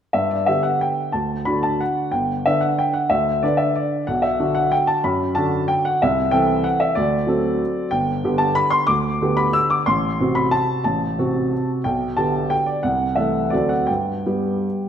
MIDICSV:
0, 0, Header, 1, 2, 480
1, 0, Start_track
1, 0, Key_signature, 1, "major"
1, 0, Tempo, 328587
1, 215, Time_signature, 3, 2, 24, 8
1, 4539, Tempo, 320684
1, 12219, Tempo, 326619
1, 16539, Tempo, 334635
1, 19899, Tempo, 378310
1, 21635, End_track
2, 0, Start_track
2, 0, Title_t, "Grand piano"
2, 0, Program_c, 0, 0
2, 193, Note_on_c, 0, 76, 61
2, 206, Note_on_c, 0, 43, 42
2, 437, Note_on_c, 0, 74, 40
2, 442, Note_off_c, 0, 76, 0
2, 467, Control_c, 0, 64, 127
2, 676, Note_off_c, 0, 43, 0
2, 678, Note_on_c, 0, 76, 58
2, 687, Note_off_c, 0, 74, 0
2, 695, Note_on_c, 0, 50, 30
2, 702, Note_on_c, 0, 59, 31
2, 709, Control_c, 0, 64, 0
2, 713, Note_on_c, 0, 67, 39
2, 919, Note_on_c, 0, 78, 54
2, 932, Note_off_c, 0, 76, 0
2, 1177, Note_off_c, 0, 78, 0
2, 1185, Note_on_c, 0, 79, 60
2, 1610, Note_off_c, 0, 50, 0
2, 1613, Note_off_c, 0, 59, 0
2, 1619, Note_off_c, 0, 67, 0
2, 1643, Note_on_c, 0, 81, 50
2, 1659, Note_on_c, 0, 38, 38
2, 1667, Note_off_c, 0, 79, 0
2, 1954, Control_c, 0, 64, 127
2, 2124, Note_on_c, 0, 83, 61
2, 2130, Note_off_c, 0, 38, 0
2, 2136, Note_off_c, 0, 81, 0
2, 2136, Note_on_c, 0, 50, 30
2, 2147, Note_on_c, 0, 62, 34
2, 2149, Note_on_c, 0, 66, 37
2, 2378, Note_off_c, 0, 83, 0
2, 2378, Note_on_c, 0, 81, 61
2, 2628, Note_off_c, 0, 81, 0
2, 2637, Note_on_c, 0, 78, 60
2, 2656, Control_c, 0, 64, 0
2, 3044, Note_off_c, 0, 50, 0
2, 3049, Note_off_c, 0, 62, 0
2, 3050, Note_off_c, 0, 66, 0
2, 3089, Note_on_c, 0, 79, 57
2, 3106, Note_on_c, 0, 31, 43
2, 3110, Note_off_c, 0, 78, 0
2, 3356, Control_c, 0, 64, 127
2, 3562, Note_off_c, 0, 31, 0
2, 3567, Note_off_c, 0, 79, 0
2, 3587, Note_on_c, 0, 76, 64
2, 3590, Control_c, 0, 64, 0
2, 3595, Note_on_c, 0, 50, 35
2, 3605, Note_on_c, 0, 62, 36
2, 3607, Note_on_c, 0, 71, 37
2, 3810, Note_on_c, 0, 78, 53
2, 3823, Note_off_c, 0, 76, 0
2, 4060, Note_off_c, 0, 78, 0
2, 4069, Note_on_c, 0, 79, 63
2, 4288, Note_on_c, 0, 78, 58
2, 4309, Note_off_c, 0, 79, 0
2, 4490, Note_off_c, 0, 50, 0
2, 4495, Note_off_c, 0, 62, 0
2, 4496, Note_off_c, 0, 71, 0
2, 4522, Note_on_c, 0, 76, 62
2, 4530, Note_on_c, 0, 38, 43
2, 4531, Note_off_c, 0, 78, 0
2, 4782, Control_c, 0, 64, 127
2, 4999, Note_off_c, 0, 38, 0
2, 5010, Note_off_c, 0, 76, 0
2, 5017, Note_on_c, 0, 74, 60
2, 5022, Note_on_c, 0, 50, 33
2, 5028, Note_on_c, 0, 62, 37
2, 5037, Note_on_c, 0, 71, 39
2, 5039, Control_c, 0, 64, 0
2, 5235, Note_on_c, 0, 76, 57
2, 5262, Note_off_c, 0, 74, 0
2, 5494, Note_off_c, 0, 76, 0
2, 5509, Note_on_c, 0, 74, 59
2, 5924, Note_off_c, 0, 50, 0
2, 5927, Note_off_c, 0, 62, 0
2, 5931, Note_off_c, 0, 71, 0
2, 5981, Note_on_c, 0, 78, 58
2, 5983, Note_off_c, 0, 74, 0
2, 5994, Note_on_c, 0, 35, 42
2, 6206, Note_on_c, 0, 76, 53
2, 6214, Note_off_c, 0, 78, 0
2, 6215, Control_c, 0, 64, 127
2, 6447, Note_off_c, 0, 35, 0
2, 6467, Note_on_c, 0, 62, 36
2, 6469, Note_on_c, 0, 50, 38
2, 6475, Note_on_c, 0, 66, 42
2, 6693, Note_on_c, 0, 78, 65
2, 6697, Note_off_c, 0, 76, 0
2, 6946, Note_off_c, 0, 78, 0
2, 6946, Note_on_c, 0, 79, 72
2, 6971, Control_c, 0, 64, 0
2, 7182, Note_on_c, 0, 81, 66
2, 7190, Note_off_c, 0, 79, 0
2, 7373, Note_off_c, 0, 50, 0
2, 7373, Note_off_c, 0, 62, 0
2, 7376, Note_off_c, 0, 66, 0
2, 7421, Note_off_c, 0, 81, 0
2, 7432, Note_on_c, 0, 83, 62
2, 7433, Note_on_c, 0, 42, 47
2, 7685, Control_c, 0, 64, 127
2, 7889, Note_off_c, 0, 42, 0
2, 7893, Note_on_c, 0, 81, 65
2, 7903, Note_off_c, 0, 83, 0
2, 7909, Note_on_c, 0, 50, 40
2, 7913, Note_on_c, 0, 62, 38
2, 7927, Note_on_c, 0, 66, 43
2, 8388, Note_off_c, 0, 81, 0
2, 8388, Note_on_c, 0, 79, 72
2, 8403, Control_c, 0, 64, 0
2, 8633, Note_off_c, 0, 79, 0
2, 8645, Note_on_c, 0, 78, 68
2, 8816, Note_off_c, 0, 50, 0
2, 8818, Note_off_c, 0, 62, 0
2, 8825, Note_off_c, 0, 66, 0
2, 8876, Note_off_c, 0, 78, 0
2, 8900, Note_on_c, 0, 76, 66
2, 8911, Note_on_c, 0, 36, 52
2, 9115, Control_c, 0, 64, 127
2, 9337, Note_on_c, 0, 79, 73
2, 9351, Note_off_c, 0, 36, 0
2, 9355, Note_on_c, 0, 52, 42
2, 9357, Note_on_c, 0, 60, 39
2, 9359, Note_off_c, 0, 76, 0
2, 9367, Note_on_c, 0, 69, 50
2, 9825, Note_on_c, 0, 78, 67
2, 9826, Note_off_c, 0, 79, 0
2, 9847, Control_c, 0, 64, 0
2, 10065, Note_on_c, 0, 76, 67
2, 10071, Note_off_c, 0, 78, 0
2, 10256, Note_off_c, 0, 52, 0
2, 10257, Note_off_c, 0, 60, 0
2, 10262, Note_off_c, 0, 69, 0
2, 10294, Note_on_c, 0, 74, 74
2, 10306, Note_off_c, 0, 76, 0
2, 10317, Note_on_c, 0, 38, 49
2, 10607, Control_c, 0, 64, 127
2, 10764, Note_on_c, 0, 54, 43
2, 10771, Note_off_c, 0, 38, 0
2, 10778, Note_on_c, 0, 60, 44
2, 10785, Note_on_c, 0, 69, 46
2, 11283, Control_c, 0, 64, 0
2, 11677, Note_off_c, 0, 54, 0
2, 11684, Note_off_c, 0, 60, 0
2, 11687, Note_off_c, 0, 69, 0
2, 11724, Note_on_c, 0, 79, 74
2, 11737, Note_off_c, 0, 74, 0
2, 11737, Note_on_c, 0, 31, 54
2, 11989, Control_c, 0, 64, 127
2, 12201, Note_off_c, 0, 31, 0
2, 12220, Note_on_c, 0, 50, 47
2, 12234, Note_on_c, 0, 67, 49
2, 12235, Note_on_c, 0, 59, 42
2, 12429, Note_on_c, 0, 81, 76
2, 12448, Note_off_c, 0, 79, 0
2, 12680, Note_on_c, 0, 83, 83
2, 12686, Note_off_c, 0, 81, 0
2, 12713, Control_c, 0, 64, 0
2, 12905, Note_on_c, 0, 84, 75
2, 12934, Note_off_c, 0, 83, 0
2, 13123, Note_off_c, 0, 50, 0
2, 13130, Note_off_c, 0, 59, 0
2, 13130, Note_off_c, 0, 67, 0
2, 13143, Note_on_c, 0, 86, 82
2, 13157, Note_on_c, 0, 38, 51
2, 13162, Note_off_c, 0, 84, 0
2, 13433, Control_c, 0, 64, 127
2, 13637, Note_off_c, 0, 38, 0
2, 13651, Note_on_c, 0, 50, 45
2, 13663, Note_on_c, 0, 59, 41
2, 13669, Note_on_c, 0, 67, 46
2, 13878, Note_on_c, 0, 83, 76
2, 13887, Note_off_c, 0, 86, 0
2, 14122, Note_on_c, 0, 88, 84
2, 14134, Note_off_c, 0, 83, 0
2, 14162, Control_c, 0, 64, 0
2, 14369, Note_on_c, 0, 86, 70
2, 14372, Note_off_c, 0, 88, 0
2, 14551, Note_off_c, 0, 50, 0
2, 14557, Note_off_c, 0, 59, 0
2, 14560, Note_off_c, 0, 67, 0
2, 14605, Note_on_c, 0, 84, 70
2, 14609, Note_off_c, 0, 86, 0
2, 14618, Note_on_c, 0, 33, 52
2, 14896, Control_c, 0, 64, 127
2, 15072, Note_off_c, 0, 33, 0
2, 15106, Note_on_c, 0, 48, 40
2, 15109, Note_on_c, 0, 60, 43
2, 15117, Note_on_c, 0, 66, 47
2, 15322, Note_off_c, 0, 84, 0
2, 15324, Note_on_c, 0, 83, 73
2, 15563, Note_on_c, 0, 81, 74
2, 15573, Note_off_c, 0, 83, 0
2, 15598, Control_c, 0, 64, 0
2, 16010, Note_off_c, 0, 48, 0
2, 16011, Note_off_c, 0, 60, 0
2, 16015, Note_off_c, 0, 66, 0
2, 16025, Note_off_c, 0, 81, 0
2, 16047, Note_on_c, 0, 81, 60
2, 16061, Note_on_c, 0, 33, 47
2, 16313, Control_c, 0, 64, 127
2, 16527, Note_off_c, 0, 33, 0
2, 16546, Note_on_c, 0, 48, 40
2, 16546, Note_on_c, 0, 60, 39
2, 16556, Note_on_c, 0, 66, 43
2, 17040, Control_c, 0, 64, 0
2, 17263, Note_off_c, 0, 81, 0
2, 17444, Note_off_c, 0, 60, 0
2, 17445, Note_off_c, 0, 48, 0
2, 17449, Note_off_c, 0, 66, 0
2, 17492, Note_on_c, 0, 79, 65
2, 17507, Note_on_c, 0, 35, 45
2, 17804, Control_c, 0, 64, 127
2, 17956, Note_on_c, 0, 81, 66
2, 17962, Note_off_c, 0, 35, 0
2, 17968, Note_on_c, 0, 50, 36
2, 17969, Note_off_c, 0, 79, 0
2, 17977, Note_on_c, 0, 59, 36
2, 17982, Note_on_c, 0, 67, 39
2, 18435, Note_on_c, 0, 79, 69
2, 18455, Note_off_c, 0, 81, 0
2, 18484, Control_c, 0, 64, 0
2, 18669, Note_on_c, 0, 74, 56
2, 18688, Note_off_c, 0, 79, 0
2, 18872, Note_off_c, 0, 50, 0
2, 18877, Note_off_c, 0, 59, 0
2, 18879, Note_off_c, 0, 67, 0
2, 18908, Note_on_c, 0, 78, 58
2, 18916, Note_off_c, 0, 74, 0
2, 18924, Note_on_c, 0, 36, 42
2, 19212, Control_c, 0, 64, 127
2, 19375, Note_on_c, 0, 76, 53
2, 19381, Note_off_c, 0, 36, 0
2, 19388, Note_off_c, 0, 78, 0
2, 19390, Note_on_c, 0, 52, 34
2, 19399, Note_on_c, 0, 57, 34
2, 19399, Note_on_c, 0, 69, 35
2, 19845, Note_off_c, 0, 52, 0
2, 19850, Note_off_c, 0, 57, 0
2, 19850, Note_off_c, 0, 69, 0
2, 19873, Note_on_c, 0, 74, 60
2, 19889, Note_off_c, 0, 76, 0
2, 19901, Note_on_c, 0, 60, 34
2, 19903, Note_on_c, 0, 38, 43
2, 19903, Note_on_c, 0, 54, 35
2, 19906, Note_on_c, 0, 69, 34
2, 19916, Control_c, 0, 64, 0
2, 20116, Note_on_c, 0, 78, 53
2, 20118, Note_off_c, 0, 74, 0
2, 20139, Control_c, 0, 64, 127
2, 20313, Note_off_c, 0, 60, 0
2, 20314, Note_off_c, 0, 54, 0
2, 20316, Note_off_c, 0, 69, 0
2, 20338, Note_on_c, 0, 79, 54
2, 20347, Note_off_c, 0, 38, 0
2, 20352, Note_off_c, 0, 78, 0
2, 20352, Note_on_c, 0, 43, 38
2, 20376, Control_c, 0, 64, 0
2, 20631, Control_c, 0, 64, 127
2, 20817, Note_off_c, 0, 43, 0
2, 20840, Note_on_c, 0, 55, 35
2, 20843, Note_on_c, 0, 59, 33
2, 20847, Note_on_c, 0, 67, 37
2, 21343, Control_c, 0, 64, 0
2, 21635, Note_off_c, 0, 55, 0
2, 21635, Note_off_c, 0, 59, 0
2, 21635, Note_off_c, 0, 67, 0
2, 21635, Note_off_c, 0, 79, 0
2, 21635, End_track
0, 0, End_of_file